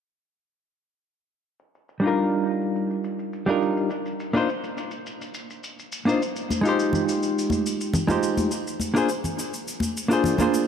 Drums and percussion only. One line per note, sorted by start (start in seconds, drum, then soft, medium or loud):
1.59 shaker soft
1.75 shaker soft
1.89 shaker medium
2.03 shaker soft
2.18 shaker soft
2.32 shaker soft
2.47 shaker medium
2.61 shaker soft
2.76 shaker soft
2.91 shaker soft
3.04 shaker medium
3.19 shaker soft
3.33 shaker soft
3.47 shaker soft
3.62 shaker medium
3.77 shaker soft
3.90 shaker medium
4.06 shaker soft
4.20 shaker medium
4.35 shaker soft
4.49 shaker medium
4.64 shaker soft
4.78 shaker medium
4.91 shaker soft
5.06 shaker medium
5.21 shaker soft
5.34 shaker medium
5.50 shaker soft
5.64 shaker medium
5.79 shaker soft
5.92 shaker medium
6.09 shaker soft
6.22 shaker medium
6.36 shaker soft
6.50 high conga medium
6.50 shaker medium
6.65 shaker soft
6.80 shaker medium
6.93 low conga medium
6.93 shaker soft
7.09 shaker medium
7.23 shaker soft
7.39 shaker medium
7.50 high conga medium
7.50 shaker soft
7.66 shaker medium
7.81 shaker soft
7.94 low conga medium
7.94 shaker medium
8.08 high conga medium
8.08 low conga medium
8.08 shaker soft
8.23 shaker medium
8.37 high conga medium
8.37 shaker soft
8.51 shaker medium
8.67 shaker soft
8.80 high conga medium
8.80 shaker medium
8.96 shaker soft
9.09 shaker medium
9.24 low conga medium
9.24 shaker soft
9.39 shaker medium
9.54 shaker soft
9.68 shaker soft
9.80 high conga medium
9.80 shaker soft
9.97 shaker medium
10.11 shaker soft
10.24 low conga medium
10.24 shaker medium
10.38 high conga loud
10.38 low conga medium
10.38 shaker soft
10.54 shaker medium